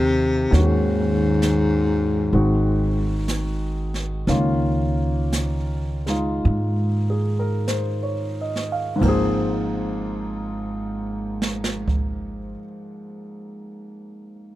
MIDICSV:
0, 0, Header, 1, 5, 480
1, 0, Start_track
1, 0, Key_signature, -4, "major"
1, 0, Tempo, 887574
1, 285, Time_signature, 4, 2, 24, 8
1, 767, Tempo, 933126
1, 1727, Tempo, 995025
1, 2207, Tempo, 1045296
1, 2687, Tempo, 1119403
1, 3167, Tempo, 1217039
1, 3647, Tempo, 1354402
1, 4127, Tempo, 1425178
1, 5992, End_track
2, 0, Start_track
2, 0, Title_t, "Grand piano"
2, 0, Program_c, 0, 0
2, 0, Control_c, 0, 64, 127
2, 0, Note_on_c, 0, 53, 57
2, 0, Note_on_c, 0, 58, 53
2, 0, Note_on_c, 0, 60, 37
2, 0, Note_on_c, 0, 63, 38
2, 0, Note_on_c, 0, 68, 63
2, 0, Note_on_c, 0, 70, 46
2, 268, Note_off_c, 0, 58, 0
2, 270, Note_off_c, 0, 53, 0
2, 273, Note_on_c, 0, 51, 47
2, 276, Note_on_c, 0, 58, 45
2, 283, Note_off_c, 0, 60, 0
2, 289, Note_off_c, 0, 63, 0
2, 289, Note_on_c, 0, 61, 43
2, 292, Control_c, 0, 64, 0
2, 293, Note_off_c, 0, 70, 0
2, 294, Note_on_c, 0, 66, 50
2, 302, Note_off_c, 0, 68, 0
2, 392, Control_c, 0, 64, 127
2, 1227, Note_off_c, 0, 51, 0
2, 1233, Note_off_c, 0, 58, 0
2, 1235, Note_on_c, 0, 51, 50
2, 1236, Note_off_c, 0, 66, 0
2, 1237, Note_on_c, 0, 56, 45
2, 1239, Note_off_c, 0, 61, 0
2, 1240, Note_on_c, 0, 60, 43
2, 1243, Control_c, 0, 64, 0
2, 1243, Note_on_c, 0, 66, 53
2, 1327, Control_c, 0, 64, 127
2, 2201, Note_off_c, 0, 51, 0
2, 2206, Note_off_c, 0, 56, 0
2, 2207, Note_off_c, 0, 60, 0
2, 2208, Note_on_c, 0, 51, 45
2, 2208, Note_on_c, 0, 61, 43
2, 2209, Note_off_c, 0, 66, 0
2, 2210, Note_on_c, 0, 58, 43
2, 2212, Control_c, 0, 64, 0
2, 2213, Note_on_c, 0, 65, 52
2, 2306, Control_c, 0, 64, 127
2, 3004, Note_on_c, 0, 56, 39
2, 3012, Note_off_c, 0, 65, 0
2, 3012, Note_on_c, 0, 63, 36
2, 3019, Note_on_c, 0, 65, 44
2, 3425, Note_on_c, 0, 68, 36
2, 3541, Note_on_c, 0, 70, 40
2, 3565, Note_off_c, 0, 68, 0
2, 3652, Note_on_c, 0, 72, 45
2, 3701, Note_off_c, 0, 70, 0
2, 3777, Note_on_c, 0, 73, 41
2, 3871, Note_off_c, 0, 72, 0
2, 3914, Note_on_c, 0, 75, 41
2, 3977, Note_off_c, 0, 73, 0
2, 4023, Note_on_c, 0, 77, 44
2, 4049, Note_off_c, 0, 75, 0
2, 4107, Note_on_c, 0, 44, 54
2, 4118, Note_on_c, 0, 53, 51
2, 4124, Note_off_c, 0, 56, 0
2, 4124, Note_off_c, 0, 58, 0
2, 4127, Note_off_c, 0, 51, 0
2, 4127, Note_off_c, 0, 61, 0
2, 4128, Note_off_c, 0, 63, 0
2, 4129, Control_c, 0, 64, 0
2, 4130, Note_off_c, 0, 65, 0
2, 4130, Note_on_c, 0, 58, 51
2, 4138, Note_on_c, 0, 60, 52
2, 4149, Note_on_c, 0, 68, 58
2, 4186, Note_off_c, 0, 77, 0
2, 4190, Control_c, 0, 64, 127
2, 5308, Note_off_c, 0, 44, 0
2, 5319, Note_off_c, 0, 53, 0
2, 5329, Note_off_c, 0, 58, 0
2, 5338, Note_off_c, 0, 60, 0
2, 5349, Note_off_c, 0, 68, 0
2, 5992, End_track
3, 0, Start_track
3, 0, Title_t, "Baritone saxophone"
3, 0, Program_c, 1, 67
3, 0, Note_on_c, 1, 48, 88
3, 299, Note_off_c, 1, 48, 0
3, 312, Note_on_c, 1, 44, 76
3, 1718, Note_off_c, 1, 44, 0
3, 5992, End_track
4, 0, Start_track
4, 0, Title_t, "Upright bass"
4, 0, Program_c, 2, 32
4, 0, Note_on_c, 2, 39, 75
4, 261, Note_off_c, 2, 39, 0
4, 282, Note_on_c, 2, 39, 74
4, 1215, Note_off_c, 2, 39, 0
4, 1235, Note_on_c, 2, 32, 70
4, 2185, Note_off_c, 2, 32, 0
4, 2204, Note_on_c, 2, 37, 72
4, 3148, Note_off_c, 2, 37, 0
4, 3169, Note_on_c, 2, 44, 77
4, 4113, Note_off_c, 2, 44, 0
4, 4127, Note_on_c, 2, 32, 74
4, 5313, Note_off_c, 2, 32, 0
4, 5992, End_track
5, 0, Start_track
5, 0, Title_t, "Drums"
5, 287, Note_on_c, 9, 25, 29
5, 287, Note_on_c, 9, 38, 27
5, 341, Note_off_c, 9, 38, 0
5, 768, Note_on_c, 9, 38, 41
5, 768, Note_on_c, 9, 44, 52
5, 819, Note_off_c, 9, 38, 0
5, 819, Note_off_c, 9, 44, 0
5, 1242, Note_off_c, 9, 25, 0
5, 1242, Note_on_c, 9, 25, 27
5, 1725, Note_on_c, 9, 38, 38
5, 1725, Note_on_c, 9, 44, 44
5, 1773, Note_off_c, 9, 38, 0
5, 1773, Note_off_c, 9, 44, 0
5, 2044, Note_on_c, 9, 38, 22
5, 2092, Note_off_c, 9, 38, 0
5, 2203, Note_off_c, 9, 25, 0
5, 2203, Note_on_c, 9, 25, 26
5, 2203, Note_on_c, 9, 38, 26
5, 2249, Note_off_c, 9, 38, 0
5, 2687, Note_on_c, 9, 38, 40
5, 2687, Note_on_c, 9, 44, 51
5, 2730, Note_off_c, 9, 38, 0
5, 2730, Note_off_c, 9, 44, 0
5, 3005, Note_on_c, 9, 38, 23
5, 3048, Note_off_c, 9, 38, 0
5, 3171, Note_off_c, 9, 25, 0
5, 3171, Note_on_c, 9, 25, 30
5, 3652, Note_on_c, 9, 38, 38
5, 3652, Note_on_c, 9, 44, 46
5, 3688, Note_off_c, 9, 38, 0
5, 3688, Note_off_c, 9, 44, 0
5, 3964, Note_on_c, 9, 38, 23
5, 4000, Note_off_c, 9, 38, 0
5, 4129, Note_on_c, 9, 36, 43
5, 4129, Note_on_c, 9, 51, 45
5, 4162, Note_off_c, 9, 36, 0
5, 4163, Note_off_c, 9, 51, 0
5, 4516, Note_off_c, 9, 25, 0
5, 4936, Note_on_c, 9, 38, 43
5, 4970, Note_off_c, 9, 38, 0
5, 5011, Note_on_c, 9, 38, 57
5, 5045, Note_off_c, 9, 38, 0
5, 5090, Note_on_c, 9, 36, 68
5, 5124, Note_off_c, 9, 36, 0
5, 5992, End_track
0, 0, End_of_file